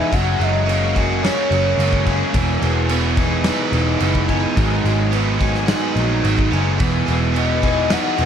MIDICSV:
0, 0, Header, 1, 8, 480
1, 0, Start_track
1, 0, Tempo, 555556
1, 110, Time_signature, 4, 2, 24, 8
1, 7131, End_track
2, 0, Start_track
2, 0, Title_t, "Soft synth lead"
2, 0, Program_c, 0, 80
2, 0, Note_on_c, 0, 76, 102
2, 117, Note_on_c, 0, 78, 118
2, 130, Note_off_c, 0, 76, 0
2, 370, Note_on_c, 0, 75, 102
2, 382, Note_off_c, 0, 78, 0
2, 840, Note_off_c, 0, 75, 0
2, 1058, Note_on_c, 0, 73, 114
2, 1749, Note_off_c, 0, 73, 0
2, 6366, Note_on_c, 0, 75, 86
2, 6845, Note_on_c, 0, 78, 107
2, 6858, Note_off_c, 0, 75, 0
2, 7131, Note_off_c, 0, 78, 0
2, 7131, End_track
3, 0, Start_track
3, 0, Title_t, "Clean electric guitar"
3, 0, Program_c, 1, 27
3, 0, Note_on_c, 1, 63, 65
3, 114, Note_off_c, 1, 63, 0
3, 844, Note_on_c, 1, 54, 66
3, 1302, Note_off_c, 1, 54, 0
3, 1792, Note_on_c, 1, 61, 63
3, 2031, Note_off_c, 1, 61, 0
3, 2032, Note_on_c, 1, 59, 75
3, 2276, Note_off_c, 1, 59, 0
3, 2279, Note_on_c, 1, 59, 72
3, 2505, Note_off_c, 1, 59, 0
3, 2747, Note_on_c, 1, 59, 70
3, 3226, Note_off_c, 1, 59, 0
3, 3230, Note_on_c, 1, 59, 63
3, 3469, Note_off_c, 1, 59, 0
3, 3713, Note_on_c, 1, 63, 68
3, 3952, Note_on_c, 1, 54, 75
3, 4183, Note_off_c, 1, 54, 0
3, 4679, Note_on_c, 1, 54, 63
3, 4915, Note_off_c, 1, 63, 0
3, 5149, Note_off_c, 1, 54, 0
3, 5643, Note_on_c, 1, 63, 66
3, 5876, Note_off_c, 1, 63, 0
3, 5884, Note_on_c, 1, 59, 73
3, 6115, Note_off_c, 1, 59, 0
3, 6125, Note_on_c, 1, 59, 67
3, 6356, Note_off_c, 1, 59, 0
3, 6604, Note_on_c, 1, 59, 65
3, 7070, Note_off_c, 1, 59, 0
3, 7080, Note_on_c, 1, 59, 71
3, 7131, Note_off_c, 1, 59, 0
3, 7131, End_track
4, 0, Start_track
4, 0, Title_t, "Overdriven electric guitar"
4, 0, Program_c, 2, 29
4, 0, Note_on_c, 2, 52, 69
4, 0, Note_on_c, 2, 59, 58
4, 0, Note_on_c, 2, 63, 71
4, 0, Note_on_c, 2, 68, 74
4, 99, Note_off_c, 2, 52, 0
4, 102, Note_on_c, 2, 54, 68
4, 106, Note_off_c, 2, 59, 0
4, 113, Note_off_c, 2, 63, 0
4, 128, Note_off_c, 2, 68, 0
4, 337, Note_off_c, 2, 54, 0
4, 347, Note_on_c, 2, 54, 63
4, 590, Note_on_c, 2, 58, 71
4, 832, Note_on_c, 2, 68, 69
4, 1076, Note_on_c, 2, 61, 70
4, 1300, Note_off_c, 2, 54, 0
4, 1311, Note_on_c, 2, 54, 75
4, 1536, Note_off_c, 2, 58, 0
4, 1547, Note_on_c, 2, 58, 64
4, 1780, Note_off_c, 2, 68, 0
4, 1783, Note_on_c, 2, 68, 72
4, 2021, Note_on_c, 2, 40, 72
4, 2028, Note_off_c, 2, 58, 0
4, 2030, Note_off_c, 2, 54, 0
4, 2033, Note_off_c, 2, 61, 0
4, 2273, Note_on_c, 2, 52, 69
4, 2506, Note_on_c, 2, 59, 70
4, 2734, Note_off_c, 2, 68, 0
4, 2737, Note_on_c, 2, 68, 68
4, 2978, Note_on_c, 2, 63, 70
4, 3216, Note_off_c, 2, 52, 0
4, 3226, Note_off_c, 2, 40, 0
4, 3226, Note_on_c, 2, 52, 65
4, 3454, Note_off_c, 2, 59, 0
4, 3457, Note_on_c, 2, 59, 62
4, 3697, Note_off_c, 2, 68, 0
4, 3700, Note_on_c, 2, 68, 72
4, 3948, Note_off_c, 2, 52, 0
4, 3950, Note_on_c, 2, 44, 65
4, 4200, Note_on_c, 2, 54, 69
4, 4226, Note_off_c, 2, 68, 0
4, 4428, Note_off_c, 2, 59, 0
4, 4432, Note_on_c, 2, 59, 66
4, 4674, Note_on_c, 2, 68, 71
4, 4921, Note_off_c, 2, 63, 0
4, 4925, Note_on_c, 2, 63, 72
4, 5150, Note_off_c, 2, 44, 0
4, 5155, Note_off_c, 2, 54, 0
4, 5165, Note_on_c, 2, 54, 71
4, 5400, Note_off_c, 2, 59, 0
4, 5411, Note_on_c, 2, 59, 61
4, 5636, Note_off_c, 2, 68, 0
4, 5639, Note_on_c, 2, 68, 68
4, 5877, Note_off_c, 2, 54, 0
4, 5877, Note_off_c, 2, 63, 0
4, 5879, Note_on_c, 2, 40, 73
4, 5880, Note_off_c, 2, 59, 0
4, 6115, Note_on_c, 2, 52, 69
4, 6349, Note_on_c, 2, 59, 69
4, 6589, Note_off_c, 2, 68, 0
4, 6592, Note_on_c, 2, 68, 77
4, 6830, Note_on_c, 2, 63, 72
4, 7054, Note_off_c, 2, 52, 0
4, 7064, Note_on_c, 2, 52, 68
4, 7073, Note_off_c, 2, 40, 0
4, 7131, Note_off_c, 2, 52, 0
4, 7131, Note_off_c, 2, 59, 0
4, 7131, Note_off_c, 2, 63, 0
4, 7131, Note_off_c, 2, 68, 0
4, 7131, End_track
5, 0, Start_track
5, 0, Title_t, "Overdriven electric guitar"
5, 0, Program_c, 3, 29
5, 0, Note_on_c, 3, 52, 73
5, 0, Note_on_c, 3, 56, 68
5, 0, Note_on_c, 3, 59, 65
5, 0, Note_on_c, 3, 63, 83
5, 94, Note_off_c, 3, 52, 0
5, 97, Note_on_c, 3, 54, 74
5, 104, Note_off_c, 3, 59, 0
5, 106, Note_off_c, 3, 63, 0
5, 123, Note_off_c, 3, 56, 0
5, 328, Note_on_c, 3, 56, 63
5, 566, Note_on_c, 3, 61, 68
5, 819, Note_on_c, 3, 66, 63
5, 1062, Note_on_c, 3, 70, 86
5, 1288, Note_off_c, 3, 66, 0
5, 1299, Note_on_c, 3, 66, 66
5, 1304, Note_off_c, 3, 54, 0
5, 1537, Note_off_c, 3, 56, 0
5, 1541, Note_on_c, 3, 56, 73
5, 1773, Note_off_c, 3, 61, 0
5, 1784, Note_on_c, 3, 61, 66
5, 2021, Note_on_c, 3, 52, 73
5, 2024, Note_off_c, 3, 66, 0
5, 2026, Note_off_c, 3, 70, 0
5, 2027, Note_off_c, 3, 61, 0
5, 2255, Note_off_c, 3, 56, 0
5, 2259, Note_on_c, 3, 56, 59
5, 2492, Note_on_c, 3, 59, 72
5, 2737, Note_on_c, 3, 63, 64
5, 2983, Note_on_c, 3, 71, 77
5, 3217, Note_off_c, 3, 63, 0
5, 3221, Note_on_c, 3, 63, 66
5, 3226, Note_off_c, 3, 52, 0
5, 3456, Note_off_c, 3, 56, 0
5, 3459, Note_on_c, 3, 56, 74
5, 3698, Note_off_c, 3, 59, 0
5, 3701, Note_on_c, 3, 59, 67
5, 3937, Note_on_c, 3, 44, 76
5, 4186, Note_on_c, 3, 51, 61
5, 4409, Note_off_c, 3, 59, 0
5, 4413, Note_on_c, 3, 59, 71
5, 4647, Note_off_c, 3, 63, 0
5, 4650, Note_on_c, 3, 63, 63
5, 4888, Note_off_c, 3, 71, 0
5, 4891, Note_on_c, 3, 71, 83
5, 5125, Note_off_c, 3, 63, 0
5, 5136, Note_on_c, 3, 63, 65
5, 5143, Note_off_c, 3, 44, 0
5, 5381, Note_off_c, 3, 56, 0
5, 5385, Note_on_c, 3, 54, 76
5, 5387, Note_off_c, 3, 51, 0
5, 5612, Note_off_c, 3, 59, 0
5, 5623, Note_on_c, 3, 59, 64
5, 5856, Note_on_c, 3, 52, 74
5, 5860, Note_off_c, 3, 71, 0
5, 5862, Note_off_c, 3, 63, 0
5, 5866, Note_off_c, 3, 59, 0
5, 5867, Note_off_c, 3, 54, 0
5, 6093, Note_on_c, 3, 56, 64
5, 6335, Note_on_c, 3, 59, 63
5, 6583, Note_on_c, 3, 63, 66
5, 6823, Note_on_c, 3, 71, 76
5, 7054, Note_off_c, 3, 63, 0
5, 7062, Note_off_c, 3, 52, 0
5, 7064, Note_on_c, 3, 63, 70
5, 7131, Note_off_c, 3, 56, 0
5, 7131, Note_off_c, 3, 59, 0
5, 7131, Note_off_c, 3, 63, 0
5, 7131, Note_off_c, 3, 71, 0
5, 7131, End_track
6, 0, Start_track
6, 0, Title_t, "Distorted electric guitar"
6, 0, Program_c, 4, 30
6, 0, Note_on_c, 4, 47, 74
6, 0, Note_on_c, 4, 52, 82
6, 92, Note_off_c, 4, 47, 0
6, 94, Note_on_c, 4, 42, 79
6, 100, Note_off_c, 4, 52, 0
6, 109, Note_on_c, 4, 49, 89
6, 122, Note_on_c, 4, 54, 77
6, 1039, Note_off_c, 4, 42, 0
6, 1049, Note_on_c, 4, 42, 73
6, 1055, Note_off_c, 4, 49, 0
6, 1061, Note_off_c, 4, 54, 0
6, 1068, Note_on_c, 4, 49, 75
6, 1081, Note_on_c, 4, 54, 82
6, 2006, Note_off_c, 4, 42, 0
6, 2015, Note_off_c, 4, 49, 0
6, 2018, Note_on_c, 4, 40, 78
6, 2021, Note_off_c, 4, 54, 0
6, 2029, Note_on_c, 4, 47, 77
6, 2044, Note_on_c, 4, 52, 81
6, 2965, Note_off_c, 4, 40, 0
6, 2975, Note_off_c, 4, 47, 0
6, 2975, Note_on_c, 4, 40, 71
6, 2983, Note_off_c, 4, 52, 0
6, 2995, Note_on_c, 4, 47, 82
6, 3001, Note_on_c, 4, 52, 77
6, 3923, Note_off_c, 4, 40, 0
6, 3927, Note_on_c, 4, 44, 74
6, 3938, Note_off_c, 4, 47, 0
6, 3941, Note_off_c, 4, 52, 0
6, 3942, Note_on_c, 4, 51, 75
6, 3957, Note_on_c, 4, 56, 92
6, 4884, Note_off_c, 4, 44, 0
6, 4891, Note_off_c, 4, 51, 0
6, 4898, Note_on_c, 4, 44, 81
6, 4914, Note_on_c, 4, 51, 74
6, 4926, Note_off_c, 4, 56, 0
6, 4929, Note_on_c, 4, 56, 74
6, 5849, Note_off_c, 4, 44, 0
6, 5857, Note_off_c, 4, 51, 0
6, 5862, Note_on_c, 4, 40, 75
6, 5876, Note_on_c, 4, 47, 83
6, 5889, Note_off_c, 4, 56, 0
6, 5893, Note_on_c, 4, 52, 93
6, 6810, Note_off_c, 4, 40, 0
6, 6817, Note_off_c, 4, 47, 0
6, 6822, Note_on_c, 4, 40, 77
6, 6826, Note_off_c, 4, 52, 0
6, 6837, Note_on_c, 4, 47, 76
6, 6851, Note_on_c, 4, 52, 74
6, 7131, Note_off_c, 4, 40, 0
6, 7131, Note_off_c, 4, 47, 0
6, 7131, Note_off_c, 4, 52, 0
6, 7131, End_track
7, 0, Start_track
7, 0, Title_t, "Picked electric bass"
7, 0, Program_c, 5, 34
7, 108, Note_on_c, 5, 30, 103
7, 297, Note_off_c, 5, 30, 0
7, 343, Note_on_c, 5, 30, 97
7, 1099, Note_off_c, 5, 30, 0
7, 1303, Note_on_c, 5, 30, 84
7, 1494, Note_off_c, 5, 30, 0
7, 1535, Note_on_c, 5, 30, 84
7, 1917, Note_off_c, 5, 30, 0
7, 2022, Note_on_c, 5, 28, 106
7, 2213, Note_off_c, 5, 28, 0
7, 2263, Note_on_c, 5, 28, 97
7, 3019, Note_off_c, 5, 28, 0
7, 3217, Note_on_c, 5, 28, 86
7, 3410, Note_off_c, 5, 28, 0
7, 3463, Note_on_c, 5, 30, 78
7, 3842, Note_off_c, 5, 30, 0
7, 3950, Note_on_c, 5, 32, 104
7, 4138, Note_off_c, 5, 32, 0
7, 4186, Note_on_c, 5, 32, 103
7, 4940, Note_off_c, 5, 32, 0
7, 5148, Note_on_c, 5, 34, 79
7, 5365, Note_off_c, 5, 34, 0
7, 5389, Note_on_c, 5, 32, 77
7, 5605, Note_off_c, 5, 32, 0
7, 5634, Note_on_c, 5, 30, 86
7, 5848, Note_off_c, 5, 30, 0
7, 5879, Note_on_c, 5, 28, 102
7, 6063, Note_off_c, 5, 28, 0
7, 6121, Note_on_c, 5, 28, 91
7, 6868, Note_off_c, 5, 28, 0
7, 7077, Note_on_c, 5, 28, 87
7, 7131, Note_off_c, 5, 28, 0
7, 7131, End_track
8, 0, Start_track
8, 0, Title_t, "Drums"
8, 109, Note_on_c, 9, 36, 96
8, 114, Note_on_c, 9, 49, 70
8, 196, Note_off_c, 9, 36, 0
8, 200, Note_off_c, 9, 49, 0
8, 355, Note_on_c, 9, 49, 49
8, 442, Note_off_c, 9, 49, 0
8, 597, Note_on_c, 9, 49, 71
8, 683, Note_off_c, 9, 49, 0
8, 831, Note_on_c, 9, 36, 81
8, 838, Note_on_c, 9, 49, 49
8, 917, Note_off_c, 9, 36, 0
8, 924, Note_off_c, 9, 49, 0
8, 1076, Note_on_c, 9, 49, 66
8, 1077, Note_on_c, 9, 38, 103
8, 1162, Note_off_c, 9, 49, 0
8, 1164, Note_off_c, 9, 38, 0
8, 1311, Note_on_c, 9, 49, 51
8, 1397, Note_off_c, 9, 49, 0
8, 1553, Note_on_c, 9, 49, 77
8, 1640, Note_off_c, 9, 49, 0
8, 1666, Note_on_c, 9, 36, 81
8, 1752, Note_off_c, 9, 36, 0
8, 1786, Note_on_c, 9, 36, 78
8, 1786, Note_on_c, 9, 49, 54
8, 1872, Note_off_c, 9, 36, 0
8, 1872, Note_off_c, 9, 49, 0
8, 2024, Note_on_c, 9, 36, 105
8, 2024, Note_on_c, 9, 49, 77
8, 2110, Note_off_c, 9, 36, 0
8, 2110, Note_off_c, 9, 49, 0
8, 2266, Note_on_c, 9, 49, 58
8, 2353, Note_off_c, 9, 49, 0
8, 2499, Note_on_c, 9, 49, 75
8, 2586, Note_off_c, 9, 49, 0
8, 2739, Note_on_c, 9, 49, 59
8, 2741, Note_on_c, 9, 36, 91
8, 2825, Note_off_c, 9, 49, 0
8, 2828, Note_off_c, 9, 36, 0
8, 2974, Note_on_c, 9, 49, 76
8, 2975, Note_on_c, 9, 38, 114
8, 3060, Note_off_c, 9, 49, 0
8, 3062, Note_off_c, 9, 38, 0
8, 3221, Note_on_c, 9, 49, 59
8, 3307, Note_off_c, 9, 49, 0
8, 3458, Note_on_c, 9, 49, 73
8, 3545, Note_off_c, 9, 49, 0
8, 3587, Note_on_c, 9, 36, 84
8, 3673, Note_off_c, 9, 36, 0
8, 3705, Note_on_c, 9, 49, 56
8, 3707, Note_on_c, 9, 36, 72
8, 3792, Note_off_c, 9, 49, 0
8, 3793, Note_off_c, 9, 36, 0
8, 3950, Note_on_c, 9, 36, 109
8, 3954, Note_on_c, 9, 49, 68
8, 4036, Note_off_c, 9, 36, 0
8, 4041, Note_off_c, 9, 49, 0
8, 4196, Note_on_c, 9, 49, 49
8, 4283, Note_off_c, 9, 49, 0
8, 4429, Note_on_c, 9, 49, 74
8, 4515, Note_off_c, 9, 49, 0
8, 4671, Note_on_c, 9, 36, 83
8, 4672, Note_on_c, 9, 49, 53
8, 4757, Note_off_c, 9, 36, 0
8, 4758, Note_off_c, 9, 49, 0
8, 4792, Note_on_c, 9, 38, 35
8, 4879, Note_off_c, 9, 38, 0
8, 4909, Note_on_c, 9, 49, 70
8, 4910, Note_on_c, 9, 38, 116
8, 4995, Note_off_c, 9, 49, 0
8, 4997, Note_off_c, 9, 38, 0
8, 5154, Note_on_c, 9, 49, 51
8, 5241, Note_off_c, 9, 49, 0
8, 5395, Note_on_c, 9, 49, 71
8, 5481, Note_off_c, 9, 49, 0
8, 5517, Note_on_c, 9, 36, 80
8, 5604, Note_off_c, 9, 36, 0
8, 5644, Note_on_c, 9, 49, 50
8, 5730, Note_off_c, 9, 49, 0
8, 5873, Note_on_c, 9, 49, 68
8, 5877, Note_on_c, 9, 36, 113
8, 5960, Note_off_c, 9, 49, 0
8, 5963, Note_off_c, 9, 36, 0
8, 6117, Note_on_c, 9, 49, 53
8, 6203, Note_off_c, 9, 49, 0
8, 6359, Note_on_c, 9, 49, 79
8, 6445, Note_off_c, 9, 49, 0
8, 6594, Note_on_c, 9, 36, 84
8, 6594, Note_on_c, 9, 49, 60
8, 6680, Note_off_c, 9, 49, 0
8, 6681, Note_off_c, 9, 36, 0
8, 6827, Note_on_c, 9, 49, 74
8, 6829, Note_on_c, 9, 38, 109
8, 6914, Note_off_c, 9, 49, 0
8, 6915, Note_off_c, 9, 38, 0
8, 7068, Note_on_c, 9, 49, 55
8, 7131, Note_off_c, 9, 49, 0
8, 7131, End_track
0, 0, End_of_file